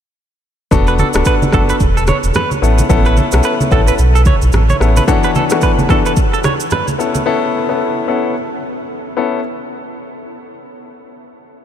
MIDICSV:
0, 0, Header, 1, 5, 480
1, 0, Start_track
1, 0, Key_signature, 3, "major"
1, 0, Tempo, 545455
1, 629, Time_signature, 4, 2, 24, 8
1, 10251, End_track
2, 0, Start_track
2, 0, Title_t, "Clean electric guitar"
2, 0, Program_c, 0, 27
2, 775, Note_on_c, 0, 71, 77
2, 825, Note_off_c, 0, 71, 0
2, 876, Note_on_c, 0, 69, 76
2, 945, Note_off_c, 0, 69, 0
2, 1116, Note_on_c, 0, 71, 80
2, 1185, Note_off_c, 0, 71, 0
2, 1355, Note_on_c, 0, 69, 86
2, 1425, Note_off_c, 0, 69, 0
2, 1494, Note_on_c, 0, 71, 85
2, 1544, Note_off_c, 0, 71, 0
2, 1735, Note_on_c, 0, 69, 67
2, 1785, Note_off_c, 0, 69, 0
2, 1835, Note_on_c, 0, 73, 72
2, 1905, Note_off_c, 0, 73, 0
2, 2076, Note_on_c, 0, 71, 85
2, 2196, Note_off_c, 0, 71, 0
2, 2695, Note_on_c, 0, 71, 82
2, 2795, Note_off_c, 0, 71, 0
2, 2795, Note_on_c, 0, 69, 74
2, 2865, Note_off_c, 0, 69, 0
2, 3036, Note_on_c, 0, 71, 75
2, 3105, Note_off_c, 0, 71, 0
2, 3276, Note_on_c, 0, 69, 73
2, 3345, Note_off_c, 0, 69, 0
2, 3415, Note_on_c, 0, 71, 76
2, 3465, Note_off_c, 0, 71, 0
2, 3655, Note_on_c, 0, 69, 76
2, 3705, Note_off_c, 0, 69, 0
2, 3756, Note_on_c, 0, 73, 76
2, 3825, Note_off_c, 0, 73, 0
2, 4135, Note_on_c, 0, 73, 71
2, 4185, Note_off_c, 0, 73, 0
2, 4375, Note_on_c, 0, 71, 67
2, 4425, Note_off_c, 0, 71, 0
2, 4615, Note_on_c, 0, 71, 81
2, 4665, Note_off_c, 0, 71, 0
2, 4716, Note_on_c, 0, 69, 78
2, 4785, Note_off_c, 0, 69, 0
2, 4956, Note_on_c, 0, 71, 80
2, 5025, Note_off_c, 0, 71, 0
2, 5196, Note_on_c, 0, 69, 84
2, 5265, Note_off_c, 0, 69, 0
2, 5336, Note_on_c, 0, 71, 81
2, 5385, Note_off_c, 0, 71, 0
2, 5575, Note_on_c, 0, 69, 71
2, 5625, Note_off_c, 0, 69, 0
2, 5676, Note_on_c, 0, 73, 76
2, 5746, Note_off_c, 0, 73, 0
2, 5917, Note_on_c, 0, 71, 83
2, 6037, Note_off_c, 0, 71, 0
2, 10251, End_track
3, 0, Start_track
3, 0, Title_t, "Grand piano"
3, 0, Program_c, 1, 0
3, 626, Note_on_c, 1, 59, 92
3, 628, Note_on_c, 1, 62, 86
3, 630, Note_on_c, 1, 66, 83
3, 631, Note_on_c, 1, 69, 99
3, 974, Note_off_c, 1, 59, 0
3, 974, Note_off_c, 1, 62, 0
3, 975, Note_off_c, 1, 66, 0
3, 976, Note_off_c, 1, 69, 0
3, 1005, Note_on_c, 1, 59, 77
3, 1007, Note_on_c, 1, 62, 67
3, 1009, Note_on_c, 1, 66, 66
3, 1010, Note_on_c, 1, 69, 83
3, 1324, Note_off_c, 1, 59, 0
3, 1324, Note_off_c, 1, 62, 0
3, 1325, Note_off_c, 1, 66, 0
3, 1326, Note_off_c, 1, 69, 0
3, 1347, Note_on_c, 1, 59, 74
3, 1348, Note_on_c, 1, 62, 70
3, 1350, Note_on_c, 1, 66, 66
3, 1352, Note_on_c, 1, 69, 80
3, 1572, Note_off_c, 1, 59, 0
3, 1573, Note_off_c, 1, 62, 0
3, 1574, Note_off_c, 1, 66, 0
3, 1575, Note_off_c, 1, 69, 0
3, 2306, Note_on_c, 1, 59, 76
3, 2308, Note_on_c, 1, 61, 64
3, 2310, Note_on_c, 1, 64, 68
3, 2311, Note_on_c, 1, 69, 81
3, 2497, Note_off_c, 1, 59, 0
3, 2498, Note_off_c, 1, 61, 0
3, 2499, Note_off_c, 1, 64, 0
3, 2500, Note_off_c, 1, 69, 0
3, 2545, Note_on_c, 1, 59, 89
3, 2547, Note_on_c, 1, 61, 83
3, 2550, Note_on_c, 1, 64, 82
3, 2551, Note_on_c, 1, 69, 99
3, 2893, Note_off_c, 1, 59, 0
3, 2894, Note_off_c, 1, 61, 0
3, 2895, Note_off_c, 1, 64, 0
3, 2896, Note_off_c, 1, 69, 0
3, 2926, Note_on_c, 1, 59, 76
3, 2927, Note_on_c, 1, 61, 70
3, 2929, Note_on_c, 1, 64, 69
3, 2931, Note_on_c, 1, 69, 82
3, 3244, Note_off_c, 1, 59, 0
3, 3245, Note_off_c, 1, 61, 0
3, 3245, Note_off_c, 1, 64, 0
3, 3246, Note_off_c, 1, 69, 0
3, 3266, Note_on_c, 1, 59, 74
3, 3268, Note_on_c, 1, 61, 68
3, 3269, Note_on_c, 1, 64, 70
3, 3271, Note_on_c, 1, 69, 82
3, 3491, Note_off_c, 1, 59, 0
3, 3492, Note_off_c, 1, 61, 0
3, 3493, Note_off_c, 1, 64, 0
3, 3494, Note_off_c, 1, 69, 0
3, 4227, Note_on_c, 1, 59, 76
3, 4229, Note_on_c, 1, 61, 69
3, 4230, Note_on_c, 1, 64, 66
3, 4232, Note_on_c, 1, 69, 80
3, 4418, Note_off_c, 1, 59, 0
3, 4419, Note_off_c, 1, 61, 0
3, 4420, Note_off_c, 1, 64, 0
3, 4420, Note_off_c, 1, 69, 0
3, 4466, Note_on_c, 1, 52, 91
3, 4467, Note_on_c, 1, 59, 85
3, 4468, Note_on_c, 1, 62, 85
3, 4470, Note_on_c, 1, 66, 83
3, 4471, Note_on_c, 1, 69, 104
3, 4813, Note_off_c, 1, 52, 0
3, 4814, Note_off_c, 1, 59, 0
3, 4815, Note_off_c, 1, 62, 0
3, 4815, Note_off_c, 1, 66, 0
3, 4816, Note_off_c, 1, 69, 0
3, 4846, Note_on_c, 1, 52, 74
3, 4847, Note_on_c, 1, 59, 66
3, 4849, Note_on_c, 1, 62, 70
3, 4850, Note_on_c, 1, 66, 68
3, 4851, Note_on_c, 1, 69, 80
3, 5164, Note_off_c, 1, 52, 0
3, 5165, Note_off_c, 1, 59, 0
3, 5165, Note_off_c, 1, 62, 0
3, 5166, Note_off_c, 1, 66, 0
3, 5167, Note_off_c, 1, 69, 0
3, 5187, Note_on_c, 1, 52, 71
3, 5188, Note_on_c, 1, 59, 66
3, 5189, Note_on_c, 1, 62, 68
3, 5190, Note_on_c, 1, 66, 67
3, 5192, Note_on_c, 1, 69, 82
3, 5412, Note_off_c, 1, 52, 0
3, 5413, Note_off_c, 1, 59, 0
3, 5413, Note_off_c, 1, 62, 0
3, 5414, Note_off_c, 1, 66, 0
3, 5415, Note_off_c, 1, 69, 0
3, 6147, Note_on_c, 1, 59, 69
3, 6149, Note_on_c, 1, 61, 64
3, 6151, Note_on_c, 1, 64, 70
3, 6153, Note_on_c, 1, 69, 77
3, 6338, Note_off_c, 1, 59, 0
3, 6339, Note_off_c, 1, 61, 0
3, 6340, Note_off_c, 1, 64, 0
3, 6341, Note_off_c, 1, 69, 0
3, 6387, Note_on_c, 1, 59, 90
3, 6389, Note_on_c, 1, 61, 83
3, 6391, Note_on_c, 1, 64, 82
3, 6393, Note_on_c, 1, 69, 102
3, 6734, Note_off_c, 1, 59, 0
3, 6735, Note_off_c, 1, 61, 0
3, 6736, Note_off_c, 1, 64, 0
3, 6737, Note_off_c, 1, 69, 0
3, 6766, Note_on_c, 1, 59, 74
3, 6768, Note_on_c, 1, 61, 65
3, 6770, Note_on_c, 1, 64, 70
3, 6772, Note_on_c, 1, 69, 84
3, 7084, Note_off_c, 1, 59, 0
3, 7085, Note_off_c, 1, 61, 0
3, 7086, Note_off_c, 1, 64, 0
3, 7087, Note_off_c, 1, 69, 0
3, 7108, Note_on_c, 1, 59, 73
3, 7110, Note_on_c, 1, 61, 70
3, 7111, Note_on_c, 1, 64, 70
3, 7113, Note_on_c, 1, 69, 80
3, 7333, Note_off_c, 1, 59, 0
3, 7334, Note_off_c, 1, 61, 0
3, 7334, Note_off_c, 1, 64, 0
3, 7335, Note_off_c, 1, 69, 0
3, 8067, Note_on_c, 1, 59, 76
3, 8069, Note_on_c, 1, 61, 67
3, 8071, Note_on_c, 1, 64, 65
3, 8073, Note_on_c, 1, 69, 80
3, 8258, Note_off_c, 1, 59, 0
3, 8259, Note_off_c, 1, 61, 0
3, 8260, Note_off_c, 1, 64, 0
3, 8261, Note_off_c, 1, 69, 0
3, 10251, End_track
4, 0, Start_track
4, 0, Title_t, "Sub bass"
4, 0, Program_c, 2, 38
4, 630, Note_on_c, 2, 28, 107
4, 907, Note_off_c, 2, 28, 0
4, 1009, Note_on_c, 2, 26, 88
4, 1083, Note_off_c, 2, 26, 0
4, 1349, Note_on_c, 2, 30, 93
4, 1525, Note_off_c, 2, 30, 0
4, 1589, Note_on_c, 2, 28, 99
4, 1867, Note_off_c, 2, 28, 0
4, 1968, Note_on_c, 2, 28, 84
4, 2042, Note_off_c, 2, 28, 0
4, 2309, Note_on_c, 2, 33, 94
4, 2485, Note_off_c, 2, 33, 0
4, 2550, Note_on_c, 2, 33, 105
4, 2828, Note_off_c, 2, 33, 0
4, 2929, Note_on_c, 2, 35, 89
4, 3003, Note_off_c, 2, 35, 0
4, 3269, Note_on_c, 2, 33, 93
4, 3445, Note_off_c, 2, 33, 0
4, 3510, Note_on_c, 2, 35, 95
4, 3788, Note_off_c, 2, 35, 0
4, 3890, Note_on_c, 2, 35, 100
4, 3963, Note_off_c, 2, 35, 0
4, 3991, Note_on_c, 2, 33, 85
4, 4166, Note_off_c, 2, 33, 0
4, 4230, Note_on_c, 2, 33, 96
4, 4406, Note_off_c, 2, 33, 0
4, 10251, End_track
5, 0, Start_track
5, 0, Title_t, "Drums"
5, 629, Note_on_c, 9, 36, 114
5, 632, Note_on_c, 9, 82, 80
5, 636, Note_on_c, 9, 64, 78
5, 717, Note_off_c, 9, 36, 0
5, 720, Note_off_c, 9, 82, 0
5, 724, Note_off_c, 9, 64, 0
5, 767, Note_on_c, 9, 82, 51
5, 855, Note_off_c, 9, 82, 0
5, 868, Note_on_c, 9, 82, 45
5, 875, Note_on_c, 9, 63, 78
5, 956, Note_off_c, 9, 82, 0
5, 963, Note_off_c, 9, 63, 0
5, 998, Note_on_c, 9, 82, 92
5, 1016, Note_on_c, 9, 37, 123
5, 1086, Note_off_c, 9, 82, 0
5, 1099, Note_on_c, 9, 82, 81
5, 1104, Note_off_c, 9, 37, 0
5, 1111, Note_on_c, 9, 36, 91
5, 1187, Note_off_c, 9, 82, 0
5, 1199, Note_off_c, 9, 36, 0
5, 1253, Note_on_c, 9, 63, 87
5, 1253, Note_on_c, 9, 82, 52
5, 1341, Note_off_c, 9, 63, 0
5, 1341, Note_off_c, 9, 82, 0
5, 1342, Note_on_c, 9, 37, 78
5, 1349, Note_on_c, 9, 36, 96
5, 1349, Note_on_c, 9, 82, 49
5, 1356, Note_on_c, 9, 64, 68
5, 1430, Note_off_c, 9, 37, 0
5, 1437, Note_off_c, 9, 36, 0
5, 1437, Note_off_c, 9, 82, 0
5, 1444, Note_off_c, 9, 64, 0
5, 1490, Note_on_c, 9, 82, 94
5, 1578, Note_off_c, 9, 82, 0
5, 1585, Note_on_c, 9, 82, 80
5, 1589, Note_on_c, 9, 36, 94
5, 1673, Note_off_c, 9, 82, 0
5, 1677, Note_off_c, 9, 36, 0
5, 1736, Note_on_c, 9, 82, 57
5, 1822, Note_off_c, 9, 82, 0
5, 1822, Note_on_c, 9, 82, 60
5, 1828, Note_on_c, 9, 37, 98
5, 1836, Note_on_c, 9, 63, 76
5, 1910, Note_off_c, 9, 82, 0
5, 1916, Note_off_c, 9, 37, 0
5, 1924, Note_off_c, 9, 63, 0
5, 1967, Note_on_c, 9, 82, 78
5, 2055, Note_off_c, 9, 82, 0
5, 2059, Note_on_c, 9, 82, 57
5, 2072, Note_on_c, 9, 64, 79
5, 2074, Note_on_c, 9, 37, 96
5, 2147, Note_off_c, 9, 82, 0
5, 2160, Note_off_c, 9, 64, 0
5, 2162, Note_off_c, 9, 37, 0
5, 2212, Note_on_c, 9, 82, 56
5, 2214, Note_on_c, 9, 63, 70
5, 2300, Note_off_c, 9, 82, 0
5, 2302, Note_off_c, 9, 63, 0
5, 2321, Note_on_c, 9, 82, 59
5, 2409, Note_off_c, 9, 82, 0
5, 2450, Note_on_c, 9, 82, 93
5, 2455, Note_on_c, 9, 63, 71
5, 2538, Note_off_c, 9, 82, 0
5, 2543, Note_off_c, 9, 63, 0
5, 2550, Note_on_c, 9, 36, 117
5, 2552, Note_on_c, 9, 82, 78
5, 2557, Note_on_c, 9, 64, 80
5, 2638, Note_off_c, 9, 36, 0
5, 2640, Note_off_c, 9, 82, 0
5, 2645, Note_off_c, 9, 64, 0
5, 2687, Note_on_c, 9, 82, 50
5, 2775, Note_off_c, 9, 82, 0
5, 2789, Note_on_c, 9, 82, 45
5, 2796, Note_on_c, 9, 63, 75
5, 2877, Note_off_c, 9, 82, 0
5, 2884, Note_off_c, 9, 63, 0
5, 2919, Note_on_c, 9, 82, 94
5, 2937, Note_on_c, 9, 37, 118
5, 3007, Note_off_c, 9, 82, 0
5, 3020, Note_on_c, 9, 82, 78
5, 3025, Note_off_c, 9, 37, 0
5, 3108, Note_off_c, 9, 82, 0
5, 3174, Note_on_c, 9, 63, 81
5, 3174, Note_on_c, 9, 82, 54
5, 3262, Note_off_c, 9, 63, 0
5, 3262, Note_off_c, 9, 82, 0
5, 3269, Note_on_c, 9, 82, 47
5, 3270, Note_on_c, 9, 36, 99
5, 3277, Note_on_c, 9, 64, 67
5, 3357, Note_off_c, 9, 82, 0
5, 3358, Note_off_c, 9, 36, 0
5, 3365, Note_off_c, 9, 64, 0
5, 3411, Note_on_c, 9, 82, 94
5, 3499, Note_off_c, 9, 82, 0
5, 3506, Note_on_c, 9, 82, 84
5, 3594, Note_off_c, 9, 82, 0
5, 3657, Note_on_c, 9, 82, 59
5, 3743, Note_off_c, 9, 82, 0
5, 3743, Note_on_c, 9, 82, 58
5, 3749, Note_on_c, 9, 36, 90
5, 3757, Note_on_c, 9, 63, 74
5, 3831, Note_off_c, 9, 82, 0
5, 3837, Note_off_c, 9, 36, 0
5, 3845, Note_off_c, 9, 63, 0
5, 3887, Note_on_c, 9, 82, 81
5, 3975, Note_off_c, 9, 82, 0
5, 3980, Note_on_c, 9, 82, 56
5, 3993, Note_on_c, 9, 64, 77
5, 3995, Note_on_c, 9, 37, 98
5, 4068, Note_off_c, 9, 82, 0
5, 4081, Note_off_c, 9, 64, 0
5, 4083, Note_off_c, 9, 37, 0
5, 4133, Note_on_c, 9, 82, 54
5, 4134, Note_on_c, 9, 63, 73
5, 4221, Note_off_c, 9, 82, 0
5, 4222, Note_off_c, 9, 63, 0
5, 4234, Note_on_c, 9, 37, 89
5, 4240, Note_on_c, 9, 82, 58
5, 4322, Note_off_c, 9, 37, 0
5, 4328, Note_off_c, 9, 82, 0
5, 4370, Note_on_c, 9, 82, 90
5, 4375, Note_on_c, 9, 63, 72
5, 4458, Note_off_c, 9, 82, 0
5, 4463, Note_off_c, 9, 63, 0
5, 4470, Note_on_c, 9, 36, 113
5, 4472, Note_on_c, 9, 82, 79
5, 4476, Note_on_c, 9, 64, 78
5, 4558, Note_off_c, 9, 36, 0
5, 4560, Note_off_c, 9, 82, 0
5, 4564, Note_off_c, 9, 64, 0
5, 4607, Note_on_c, 9, 82, 49
5, 4695, Note_off_c, 9, 82, 0
5, 4708, Note_on_c, 9, 82, 47
5, 4715, Note_on_c, 9, 63, 74
5, 4796, Note_off_c, 9, 82, 0
5, 4803, Note_off_c, 9, 63, 0
5, 4839, Note_on_c, 9, 82, 95
5, 4857, Note_on_c, 9, 37, 119
5, 4927, Note_off_c, 9, 82, 0
5, 4940, Note_on_c, 9, 82, 82
5, 4945, Note_off_c, 9, 37, 0
5, 4951, Note_on_c, 9, 36, 91
5, 5028, Note_off_c, 9, 82, 0
5, 5039, Note_off_c, 9, 36, 0
5, 5093, Note_on_c, 9, 63, 86
5, 5094, Note_on_c, 9, 82, 53
5, 5181, Note_off_c, 9, 63, 0
5, 5182, Note_off_c, 9, 82, 0
5, 5182, Note_on_c, 9, 37, 80
5, 5189, Note_on_c, 9, 82, 50
5, 5190, Note_on_c, 9, 36, 94
5, 5197, Note_on_c, 9, 64, 69
5, 5270, Note_off_c, 9, 37, 0
5, 5277, Note_off_c, 9, 82, 0
5, 5278, Note_off_c, 9, 36, 0
5, 5285, Note_off_c, 9, 64, 0
5, 5331, Note_on_c, 9, 82, 91
5, 5419, Note_off_c, 9, 82, 0
5, 5426, Note_on_c, 9, 82, 81
5, 5429, Note_on_c, 9, 36, 93
5, 5514, Note_off_c, 9, 82, 0
5, 5517, Note_off_c, 9, 36, 0
5, 5577, Note_on_c, 9, 82, 60
5, 5664, Note_off_c, 9, 82, 0
5, 5664, Note_on_c, 9, 82, 60
5, 5670, Note_on_c, 9, 37, 100
5, 5677, Note_on_c, 9, 63, 77
5, 5752, Note_off_c, 9, 82, 0
5, 5758, Note_off_c, 9, 37, 0
5, 5765, Note_off_c, 9, 63, 0
5, 5808, Note_on_c, 9, 82, 83
5, 5896, Note_off_c, 9, 82, 0
5, 5900, Note_on_c, 9, 82, 59
5, 5914, Note_on_c, 9, 64, 82
5, 5915, Note_on_c, 9, 37, 95
5, 5988, Note_off_c, 9, 82, 0
5, 6002, Note_off_c, 9, 64, 0
5, 6003, Note_off_c, 9, 37, 0
5, 6053, Note_on_c, 9, 82, 57
5, 6054, Note_on_c, 9, 63, 68
5, 6141, Note_off_c, 9, 82, 0
5, 6142, Note_off_c, 9, 63, 0
5, 6161, Note_on_c, 9, 82, 62
5, 6249, Note_off_c, 9, 82, 0
5, 6290, Note_on_c, 9, 82, 90
5, 6295, Note_on_c, 9, 63, 71
5, 6378, Note_off_c, 9, 82, 0
5, 6383, Note_off_c, 9, 63, 0
5, 10251, End_track
0, 0, End_of_file